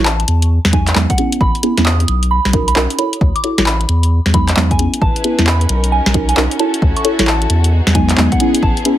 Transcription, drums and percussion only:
0.05 clap loud
0.20 closed hi-hat medium
0.28 closed hi-hat loud
0.42 closed hi-hat medium
0.65 snare medium
0.73 kick loud
0.73 closed hi-hat loud
0.87 clap medium
0.87 closed hi-hat medium
0.95 clap loud
1.10 kick loud
1.10 closed hi-hat soft
1.18 closed hi-hat loud
1.32 closed hi-hat medium
1.41 kick loud
1.55 closed hi-hat soft
1.63 closed hi-hat loud
1.78 snare medium
1.78 closed hi-hat medium
1.86 clap loud
2.00 closed hi-hat soft
2.08 closed hi-hat loud
2.23 closed hi-hat medium
2.45 snare medium
2.53 kick loud
2.53 closed hi-hat loud
2.68 closed hi-hat medium
2.76 clap loud
2.90 closed hi-hat soft
2.99 closed hi-hat loud
3.13 closed hi-hat medium
3.21 kick loud
3.36 closed hi-hat soft
3.44 closed hi-hat loud
3.58 snare medium
3.58 closed hi-hat medium
3.66 clap loud
3.81 closed hi-hat medium
3.89 closed hi-hat loud
4.03 closed hi-hat medium
4.26 snare medium
4.34 kick loud
4.34 closed hi-hat loud
4.48 clap medium
4.48 closed hi-hat medium
4.57 clap loud
4.71 kick loud
4.71 closed hi-hat soft
4.79 closed hi-hat loud
4.94 closed hi-hat medium
5.02 kick loud
5.16 closed hi-hat soft
5.24 closed hi-hat loud
5.39 snare medium
5.39 closed hi-hat medium
5.47 clap loud
5.61 closed hi-hat soft
5.69 closed hi-hat loud
5.84 closed hi-hat medium
6.06 snare medium
6.14 kick loud
6.14 closed hi-hat loud
6.29 closed hi-hat medium
6.37 clap loud
6.51 closed hi-hat medium
6.59 closed hi-hat loud
6.74 closed hi-hat medium
6.82 kick loud
6.97 closed hi-hat soft
7.05 closed hi-hat loud
7.19 snare medium
7.19 closed hi-hat medium
7.27 clap loud
7.42 closed hi-hat medium
7.50 closed hi-hat loud
7.64 closed hi-hat medium
7.87 snare medium
7.95 kick loud
7.95 closed hi-hat loud
8.09 clap medium
8.09 closed hi-hat medium
8.18 clap loud
8.32 kick loud
8.32 closed hi-hat medium
8.40 closed hi-hat loud
8.55 closed hi-hat medium
8.63 kick loud
8.77 closed hi-hat soft
8.85 closed hi-hat loud

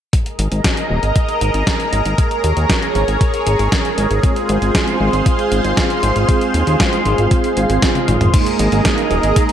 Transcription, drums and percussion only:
0.13 kick loud
0.13 closed hi-hat medium
0.26 closed hi-hat soft
0.39 closed hi-hat medium
0.52 closed hi-hat soft
0.64 kick loud
0.64 snare loud
0.64 closed hi-hat medium
0.77 closed hi-hat soft
1.03 closed hi-hat soft
1.16 kick loud
1.16 closed hi-hat medium
1.29 closed hi-hat soft
1.41 closed hi-hat medium
1.54 closed hi-hat soft
1.67 kick medium
1.67 snare loud
1.67 closed hi-hat medium
1.80 closed hi-hat soft
1.93 closed hi-hat medium
2.06 closed hi-hat soft
2.18 kick loud
2.18 closed hi-hat medium
2.31 closed hi-hat soft
2.44 closed hi-hat medium
2.57 closed hi-hat soft
2.70 kick loud
2.70 snare loud
2.70 closed hi-hat medium
2.82 closed hi-hat soft
2.95 closed hi-hat soft
3.08 closed hi-hat soft
3.21 kick loud
3.21 closed hi-hat medium
3.34 closed hi-hat soft
3.47 closed hi-hat medium
3.59 closed hi-hat soft
3.72 kick loud
3.72 snare loud
3.72 closed hi-hat medium
3.85 closed hi-hat soft
3.98 closed hi-hat medium
4.11 closed hi-hat soft
4.23 kick loud
4.23 closed hi-hat medium
4.36 closed hi-hat soft
4.49 closed hi-hat medium
4.62 closed hi-hat soft
4.75 kick loud
4.75 snare loud
4.75 closed hi-hat medium
4.88 closed hi-hat soft
5.13 closed hi-hat soft
5.26 kick loud
5.26 closed hi-hat medium
5.39 closed hi-hat soft
5.52 closed hi-hat medium
5.64 closed hi-hat soft
5.77 kick loud
5.77 snare loud
5.77 closed hi-hat medium
5.90 closed hi-hat soft
6.03 closed hi-hat medium
6.16 closed hi-hat soft
6.29 kick loud
6.29 closed hi-hat medium
6.41 closed hi-hat soft
6.54 closed hi-hat medium
6.67 closed hi-hat soft
6.80 kick loud
6.80 snare loud
6.80 closed hi-hat medium
6.93 closed hi-hat soft
7.06 closed hi-hat soft
7.18 closed hi-hat soft
7.31 kick loud
7.31 closed hi-hat medium
7.44 closed hi-hat soft
7.57 closed hi-hat medium
7.70 closed hi-hat soft
7.82 kick loud
7.82 snare loud
7.82 closed hi-hat medium
7.95 closed hi-hat soft
7.95 high tom soft
8.08 closed hi-hat medium
8.08 mid tom medium
8.21 closed hi-hat soft
8.21 mid tom medium
8.34 kick loud
8.34 closed hi-hat medium
8.34 crash medium
8.46 closed hi-hat soft
8.59 closed hi-hat medium
8.72 closed hi-hat soft
8.85 kick loud
8.85 snare loud
8.85 closed hi-hat medium
8.98 closed hi-hat soft
9.11 closed hi-hat soft
9.23 closed hi-hat soft
9.36 kick loud
9.36 closed hi-hat medium
9.49 closed hi-hat soft

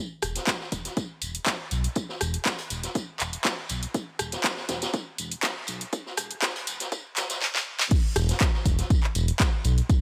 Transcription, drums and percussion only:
0.22 cross-stick medium
0.22 open hi-hat loud
0.22 tambourine medium
0.36 snare soft
0.36 closed hi-hat medium
0.47 kick loud
0.47 snare loud
0.47 clap loud
0.47 closed hi-hat medium
0.47 tambourine medium
0.60 snare soft
0.72 kick medium
0.72 open hi-hat medium
0.72 tambourine medium
0.85 snare soft
0.85 closed hi-hat medium
0.97 kick loud
0.97 closed hi-hat medium
0.97 tambourine medium
1.22 open hi-hat loud
1.22 tambourine medium
1.35 closed hi-hat medium
1.46 kick loud
1.46 snare loud
1.46 clap loud
1.46 closed hi-hat medium
1.46 tambourine medium
1.71 open hi-hat medium
1.71 tambourine medium
1.84 closed hi-hat medium
1.95 kick loud
1.95 closed hi-hat medium
1.95 tambourine medium
2.09 snare soft
2.21 cross-stick medium
2.21 open hi-hat loud
2.21 tambourine medium
2.34 closed hi-hat medium
2.45 kick loud
2.45 snare loud
2.45 clap loud
2.45 closed hi-hat soft
2.45 tambourine medium
2.58 closed hi-hat soft
2.70 open hi-hat loud
2.70 tambourine medium
2.83 snare medium
2.83 closed hi-hat medium
2.95 kick loud
2.95 closed hi-hat medium
2.95 tambourine medium
3.20 clap medium
3.20 open hi-hat loud
3.20 tambourine medium
3.33 closed hi-hat medium
3.44 kick loud
3.44 snare loud
3.44 clap loud
3.44 closed hi-hat soft
3.44 tambourine medium
3.69 open hi-hat medium
3.69 tambourine medium
3.83 closed hi-hat medium
3.94 kick loud
3.94 closed hi-hat medium
3.94 tambourine medium
4.19 cross-stick medium
4.19 open hi-hat loud
4.19 tambourine medium
4.32 snare medium
4.32 closed hi-hat medium
4.44 kick loud
4.44 snare loud
4.44 clap loud
4.44 closed hi-hat soft
4.44 tambourine medium
4.57 snare soft
4.69 kick medium
4.69 snare loud
4.69 open hi-hat loud
4.69 tambourine medium
4.82 snare loud
4.82 closed hi-hat medium
4.82 tambourine medium
4.94 kick loud
4.94 closed hi-hat medium
4.94 tambourine medium
5.18 open hi-hat loud
5.18 tambourine medium
5.31 closed hi-hat medium
5.43 kick loud
5.43 snare loud
5.43 clap loud
5.43 closed hi-hat medium
5.43 tambourine medium
5.67 open hi-hat medium
5.67 tambourine medium
5.81 closed hi-hat medium
5.93 kick loud
5.93 closed hi-hat medium
5.93 tambourine medium
6.06 snare soft
6.17 cross-stick medium
6.17 open hi-hat loud
6.17 tambourine medium
6.31 closed hi-hat medium
6.42 kick loud
6.42 snare loud
6.42 clap loud
6.42 closed hi-hat soft
6.42 tambourine medium
6.56 closed hi-hat soft
6.67 open hi-hat loud
6.67 tambourine medium
6.80 snare medium
6.80 closed hi-hat medium
6.92 kick loud
6.92 closed hi-hat soft
6.92 tambourine loud
7.17 snare loud
7.17 clap medium
7.17 open hi-hat loud
7.17 tambourine medium
7.30 snare medium
7.30 closed hi-hat medium
7.30 tambourine medium
7.41 snare medium
7.55 snare medium
7.79 snare medium
7.91 kick loud
7.91 closed hi-hat medium
7.91 crash loud
7.91 tambourine medium
8.16 cross-stick medium
8.16 open hi-hat loud
8.16 tambourine medium
8.29 snare medium
8.29 closed hi-hat medium
8.40 kick loud
8.40 snare loud
8.40 clap loud
8.40 closed hi-hat medium
8.40 tambourine medium
8.54 snare soft
8.66 kick medium
8.66 open hi-hat loud
8.66 tambourine medium
8.79 snare soft
8.79 closed hi-hat medium
8.90 kick loud
8.90 closed hi-hat medium
8.90 tambourine medium
9.03 clap soft
9.15 open hi-hat loud
9.15 tambourine medium
9.28 closed hi-hat medium
9.40 kick loud
9.40 snare loud
9.40 clap loud
9.40 closed hi-hat medium
9.40 tambourine medium
9.64 open hi-hat medium
9.64 tambourine medium
9.78 closed hi-hat medium
9.89 kick loud
9.89 closed hi-hat medium
9.89 tambourine loud

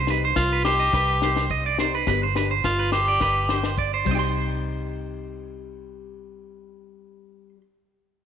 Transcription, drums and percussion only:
0.07 snare medium
0.36 kick medium
0.36 snare medium
0.65 snare medium
0.93 kick medium
0.93 snare medium
1.22 snare medium
1.36 snare medium
1.50 kick medium
1.79 snare medium
2.07 kick medium
2.07 snare medium
2.36 snare medium
2.64 kick medium
2.64 snare medium
2.92 snare medium
3.21 kick medium
3.21 snare medium
3.49 snare medium
3.63 snare medium
3.78 kick medium
4.06 kick medium
4.06 crash medium

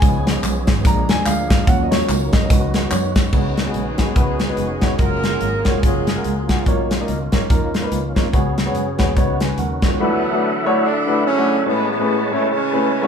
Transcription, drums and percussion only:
0.02 kick loud
0.02 closed hi-hat medium
0.02 tambourine medium
0.27 snare loud
0.27 closed hi-hat medium
0.27 tambourine medium
0.43 clap medium
0.43 closed hi-hat medium
0.43 tambourine medium
0.67 kick medium
0.67 snare loud
0.67 closed hi-hat medium
0.67 tambourine medium
0.85 kick loud
0.85 closed hi-hat loud
0.85 tambourine medium
1.09 snare loud
1.09 closed hi-hat medium
1.09 tambourine medium
1.26 clap loud
1.26 closed hi-hat medium
1.26 tambourine loud
1.50 kick loud
1.50 snare loud
1.50 closed hi-hat medium
1.50 tambourine medium
1.67 kick loud
1.67 closed hi-hat medium
1.67 tambourine medium
1.92 snare loud
1.92 closed hi-hat medium
1.92 tambourine medium
2.09 clap medium
2.09 closed hi-hat medium
2.09 tambourine medium
2.33 kick medium
2.33 snare loud
2.33 closed hi-hat medium
2.33 tambourine soft
2.50 kick loud
2.50 closed hi-hat loud
2.50 tambourine medium
2.74 snare loud
2.74 closed hi-hat medium
2.74 tambourine medium
2.91 clap loud
2.91 closed hi-hat medium
2.91 tambourine medium
3.16 kick medium
3.16 snare loud
3.16 closed hi-hat medium
3.16 tambourine medium
3.33 kick loud
3.33 crash medium
3.57 snare medium
3.57 closed hi-hat medium
3.74 closed hi-hat medium
3.98 kick medium
3.98 snare medium
3.98 closed hi-hat medium
4.16 kick loud
4.16 closed hi-hat medium
4.39 snare medium
4.39 closed hi-hat medium
4.57 closed hi-hat medium
4.81 kick medium
4.81 snare loud
4.81 closed hi-hat medium
4.99 kick loud
4.99 closed hi-hat medium
5.24 snare medium
5.24 closed hi-hat medium
5.41 closed hi-hat medium
5.65 kick medium
5.65 snare medium
5.65 closed hi-hat medium
5.83 kick loud
5.83 closed hi-hat medium
6.07 snare loud
6.07 closed hi-hat medium
6.24 closed hi-hat medium
6.49 kick medium
6.49 snare medium
6.49 closed hi-hat medium
6.66 kick medium
6.66 closed hi-hat medium
6.91 snare medium
6.91 closed hi-hat medium
7.08 closed hi-hat medium
7.32 kick medium
7.32 snare loud
7.32 closed hi-hat medium
7.50 kick loud
7.50 closed hi-hat medium
7.74 snare medium
7.74 closed hi-hat medium
7.92 closed hi-hat medium
8.16 kick medium
8.16 snare medium
8.16 closed hi-hat medium
8.33 kick loud
8.33 closed hi-hat medium
8.58 snare medium
8.58 closed hi-hat medium
8.75 closed hi-hat medium
8.99 kick medium
8.99 snare loud
8.99 closed hi-hat medium
9.17 kick medium
9.17 closed hi-hat medium
9.40 snare medium
9.40 closed hi-hat medium
9.58 closed hi-hat medium
9.82 kick medium
9.82 snare loud
9.82 closed hi-hat medium

